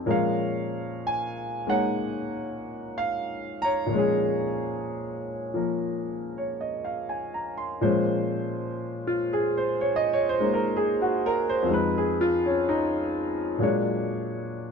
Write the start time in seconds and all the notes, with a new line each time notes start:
Already playing: A4
0.06 A#2 F3 G#3 C#4 A#4
0.10 C#5 F5
1.07 G#5
1.67 G#3 A#3 D#4 C#5 F#5
2.98 F5
3.62 C#5 A#5
3.86 A#2 F3
3.93 G#3 C#4
3.98 G#4
5.54 F3 A#3 A#4
6.38 C#5
6.61 D#5
6.85 F5
7.09 G#5
7.34 A#5
7.57 C6
7.81 A#2 F3 G#3 C#4 C5
9.07 F4
9.33 G#4
9.57 C5
9.81 C#5
9.96 D#5
10.13 C#5
10.29 C5
10.39 G#3 A#3 D#4 C#5
10.54 A#4
10.76 G#4
11.02 F#4
11.26 A#4
11.49 C5
11.63 F2 F3
11.68 G#3 D#4
11.73 B4
11.98 G#4
12.21 F4
12.46 C#4
12.69 D#4
13.58 A#2 F#3 G#3 D4
13.63 C#5